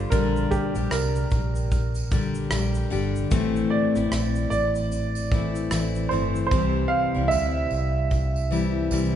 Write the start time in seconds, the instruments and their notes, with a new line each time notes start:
Already playing: steel-string acoustic guitar D3 G3 D4 F4, upright piano C5
0.10 fingered electric bass A#1, steel-string acoustic guitar A#2 D3 G3 D4 G4, upright piano A#4, kick, tambourine, shaker
0.36 shaker
0.51 upright piano G4, kick, shaker
0.75 fingered electric bass A#1, steel-string acoustic guitar G3 D4 G4, tambourine, shaker
0.91 fingered electric bass C2, upright piano A#4, cross-stick, tambourine, shaker
1.15 shaker
1.31 fingered electric bass A#1, kick, tambourine, shaker
1.55 tambourine, shaker
1.71 kick, tambourine, shaker
1.95 tambourine, shaker
2.11 steel-string acoustic guitar D3 G3 D4 G4, kick, tambourine, shaker
2.35 shaker
2.51 fingered electric bass A#1, steel-string acoustic guitar D3 G3 D4 G4, cross-stick, tambourine, shaker
2.75 shaker
2.90 fingered electric bass G1, steel-string acoustic guitar D3 G3 D4 G4, tambourine
3.16 shaker
3.31 fingered electric bass A1, steel-string acoustic guitar A2 E3 A3 C4 E4, kick, tambourine, shaker
3.56 shaker
3.70 upright piano D5
3.95 fingered electric bass A1, steel-string acoustic guitar A3 C4 E4, cross-stick, shaker
4.12 fingered electric bass A#1, cross-stick, tambourine, shaker
4.35 shaker
4.50 fingered electric bass A1, upright piano D5, tambourine, shaker
4.75 tambourine, shaker
4.92 tambourine, shaker
5.15 tambourine, shaker
5.32 steel-string acoustic guitar E3 A3 C4 E4, kick, tambourine
5.55 tambourine, shaker
5.71 fingered electric bass A1, steel-string acoustic guitar E3 A3 C4 E4, cross-stick, tambourine, shaker
5.95 shaker
6.09 fingered electric bass G1, steel-string acoustic guitar E3 A3 C4, upright piano C5, tambourine
6.13 steel-string acoustic guitar E4
6.35 shaker
6.47 upright piano C5
6.51 fingered electric bass C2, steel-string acoustic guitar C3 E3 G3 C4 E4, kick, tambourine
6.88 upright piano F5
7.15 fingered electric bass C2, steel-string acoustic guitar G3 C4 E4
7.28 upright piano E5, tambourine
7.32 fingered electric bass D2
7.71 fingered electric bass C2, tambourine
8.11 kick, tambourine
8.36 tambourine
8.51 steel-string acoustic guitar E3 G3 C4 E4, tambourine
8.91 fingered electric bass C2, steel-string acoustic guitar E3 G3 C4 E4, tambourine